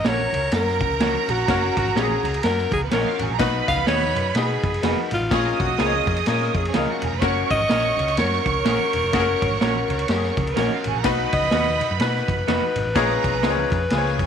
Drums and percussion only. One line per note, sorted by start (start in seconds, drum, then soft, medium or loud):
0.04 snare loud
0.04 ride medium
0.04 muted conga soft
0.20 high conga medium
0.33 ride medium
0.33 muted conga soft
0.33 low conga medium
0.52 snare loud
0.52 ride medium
0.52 muted conga soft
0.67 snare soft
0.80 kick medium
0.80 ride medium
0.80 muted conga soft
0.80 high conga medium
1.00 snare loud
1.00 ride medium
1.00 muted conga soft
1.00 high conga medium
1.13 high conga medium
1.28 ride medium
1.28 muted conga soft
1.28 low conga medium
1.47 kick loud
1.47 snare loud
1.47 ride medium
1.47 muted conga soft
1.47 low conga medium
1.77 kick loud
1.77 ride medium
1.85 high conga medium
1.96 snare loud
1.96 ride medium
1.96 muted conga soft
2.10 high conga medium
2.23 ride medium
2.23 muted conga soft
2.23 low conga medium
2.34 ride soft
2.43 snare loud
2.43 ride medium
2.43 muted conga soft
2.58 snare soft
2.71 kick medium
2.71 ride medium
2.71 muted conga soft
2.71 high conga medium
2.91 snare loud
2.91 ride medium
2.91 high conga medium
3.04 high conga medium
3.19 ride medium
3.19 muted conga soft
3.19 low conga medium
3.39 kick loud
3.39 snare loud
3.39 ride medium
3.39 muted conga soft
3.39 low conga medium
3.68 kick medium
3.68 ride medium
3.68 muted conga soft
3.77 high conga medium
3.87 snare loud
3.87 ride medium
4.02 high conga medium
4.15 ride medium
4.15 muted conga soft
4.15 low conga medium
4.35 snare loud
4.35 ride medium
4.63 kick medium
4.63 ride medium
4.63 high conga medium
4.74 ride soft
4.83 snare loud
4.83 ride medium
4.83 muted conga soft
4.83 high conga medium
4.97 high conga medium
5.11 ride medium
5.11 low conga medium
5.31 kick loud
5.31 snare loud
5.31 ride medium
5.31 muted conga soft
5.31 low conga medium
5.59 kick loud
5.59 ride medium
5.59 muted conga soft
5.68 high conga medium
5.78 snare loud
5.78 ride medium
5.78 muted conga soft
5.93 high conga medium
6.06 kick medium
6.06 ride medium
6.06 muted conga soft
6.06 low conga medium
6.16 ride medium
6.26 snare loud
6.26 ride medium
6.26 high conga soft
6.41 snare soft
6.54 kick medium
6.54 ride medium
6.54 high conga medium
6.65 ride soft
6.74 snare loud
6.74 ride medium
6.74 muted conga soft
6.74 high conga medium
6.87 high conga medium
7.02 ride medium
7.02 muted conga soft
7.02 low conga medium
7.22 kick loud
7.22 snare loud
7.22 ride medium
7.22 muted conga soft
7.22 low conga medium
7.50 kick medium
7.50 ride medium
7.59 high conga medium
7.69 snare loud
7.69 ride medium
7.83 high conga medium
7.97 ride medium
7.97 muted conga soft
7.97 low conga medium
8.08 ride soft
8.17 snare loud
8.17 ride medium
8.17 muted conga soft
8.33 snare soft
8.46 kick medium
8.46 ride medium
8.46 high conga medium
8.65 snare loud
8.65 ride medium
8.65 muted conga soft
8.65 high conga medium
8.79 high conga medium
8.93 ride medium
8.93 muted conga soft
8.93 low conga medium
9.13 kick loud
9.13 snare loud
9.13 ride medium
9.13 muted conga soft
9.13 low conga medium
9.42 kick loud
9.42 ride medium
9.42 muted conga soft
9.51 high conga medium
9.60 snare loud
9.60 ride medium
9.60 muted conga soft
9.75 high conga medium
9.88 ride medium
9.88 low conga medium
9.99 ride soft
10.08 snare loud
10.08 ride medium
10.23 snare soft
10.37 kick medium
10.37 ride medium
10.37 muted conga soft
10.37 high conga medium
10.47 ride soft
10.57 snare loud
10.57 ride medium
10.57 muted conga soft
10.57 high conga medium
10.70 high conga medium
10.84 ride medium
10.84 muted conga soft
10.84 low conga medium
11.04 kick loud
11.04 snare loud
11.04 ride medium
11.04 low conga medium
11.32 kick loud
11.32 ride medium
11.32 muted conga soft
11.42 high conga medium
11.51 snare loud
11.51 ride medium
11.67 high conga medium
11.80 ride medium
11.80 low conga medium
12.00 snare loud
12.00 ride medium
12.00 muted conga soft
12.15 snare soft
12.28 kick medium
12.28 ride medium
12.28 muted conga soft
12.28 high conga medium
12.48 snare loud
12.48 ride medium
12.48 high conga medium
12.62 high conga medium
12.76 ride medium
12.76 muted conga soft
12.76 low conga medium
12.95 kick loud
12.95 snare loud
12.95 ride medium
12.95 muted conga soft
12.95 low conga medium
13.24 kick medium
13.24 ride medium
13.33 high conga medium
13.42 snare loud
13.42 ride medium
13.42 muted conga soft
13.57 high conga medium
13.70 kick loud
13.70 ride medium
13.70 muted conga soft
13.70 low conga medium
13.90 snare loud
13.90 ride medium
13.90 muted conga soft
13.90 high conga soft
14.06 snare soft
14.18 kick medium
14.18 ride medium
14.18 high conga medium